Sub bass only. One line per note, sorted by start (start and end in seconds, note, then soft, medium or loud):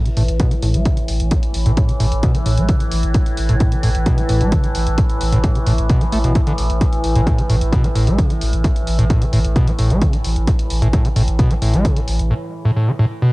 0.17 0.28 A1 loud
0.28 0.40 A1 medium
0.63 0.74 A1 loud
0.74 0.85 A1 medium
1.09 1.20 A1 loud
1.20 1.31 A1 medium
1.54 1.65 A1 loud
1.66 1.77 A1 medium
2.00 2.11 A1 loud
2.12 2.23 A1 medium
2.46 2.57 A1 loud
2.58 2.69 A1 medium
2.92 3.03 A1 loud
3.03 3.14 A1 medium
3.38 3.49 A1 loud
3.50 3.60 A1 medium
3.84 3.95 A1 loud
3.95 4.06 A1 medium
4.29 4.41 A1 loud
4.41 4.52 A1 medium
4.75 4.86 A1 loud
4.87 4.98 A1 medium
5.21 5.32 A1 loud
5.33 5.43 A1 medium
5.67 5.78 A1 loud
5.78 5.89 A1 medium
6.12 6.24 A1 loud
6.24 6.35 A1 medium
6.58 6.69 A1 loud
6.70 6.81 A1 medium
7.04 7.15 A1 loud
7.16 7.27 A1 medium
7.50 7.61 A1 loud
7.61 7.72 A1 medium
7.96 8.07 A1 loud
8.07 8.18 A1 medium
8.41 8.52 A1 loud
8.53 8.64 A1 medium
8.87 8.98 A1 loud
8.99 9.10 A1 medium
9.33 9.44 A1 loud
9.45 9.56 A1 medium
9.79 9.90 A1 loud
9.91 10.01 A1 medium
10.25 10.36 A1 loud
10.36 10.47 A1 medium
10.70 10.81 A1 loud
10.82 10.93 A1 medium
11.16 11.27 A1 loud
11.28 11.39 A1 medium
11.62 11.73 A1 loud
11.74 11.85 A1 medium
12.08 12.19 A1 loud
12.19 12.30 A1 medium